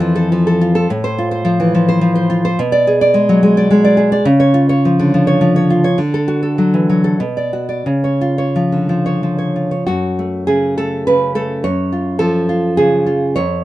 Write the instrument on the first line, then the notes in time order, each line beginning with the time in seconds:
nylon-string guitar
Already playing: F2 E3 F4 A4
0.00 F3
0.15 A4
0.32 F3
0.47 A4
0.61 F4
0.75 A4
0.90 A2
1.04 C5
1.18 F4
1.31 C5
1.45 F3
1.60 E3
1.75 F3
1.89 C5
2.01 F3
2.15 C5
2.30 F4
2.45 C5
2.59 B2
2.72 D5
2.87 G#4
3.01 D5
3.14 G#3
3.29 F#3
3.43 G#3
3.57 D5
3.71 G#3
3.85 D5
3.97 G#4
4.12 D5
4.25 C#3
4.40 C#5
4.54 F4
4.69 C#5
4.85 F3
4.99 D3
5.14 F3
5.27 C#5
5.41 F3
5.56 C#5
5.70 F4
5.84 C#5
5.98 D3
6.14 A4
6.28 F#4
6.43 A4
6.58 F#3
6.74 E3
6.89 F#3
7.04 A4
7.20 B2
7.37 D5
7.53 F#4
7.69 D5
7.86 C#3
8.04 C#5
8.21 F4
8.38 C#5
8.56 F3
8.72 D3
8.89 F3
9.06 C#5
9.23 F3
9.38 C#5
9.56 F4
9.71 C#5
9.87 F#2 F#4
10.19 A3
10.47 C#3 G#4
10.78 A3 A4
11.07 C#3 B4
11.35 A3 A4
11.64 F#2 C#5
11.92 F4
12.19 F3 A4
12.49 F4
12.77 C#3 G#4
13.06 F4
13.36 F2 C#5